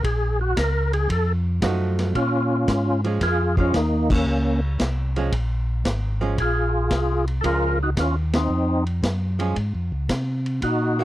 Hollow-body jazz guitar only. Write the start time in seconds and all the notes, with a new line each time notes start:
1.62 F3 A3 D#4 F#4
3.04 F3 G#3 C#4
3.57 F3 G#3 C#4
5.17 F3 G#3 C#4
6.21 F3 G#3 C#4
7.44 F3 G#3 C#4
9.39 F3 G#3 C#4
10.99 D#3 A#3 C#4 F#4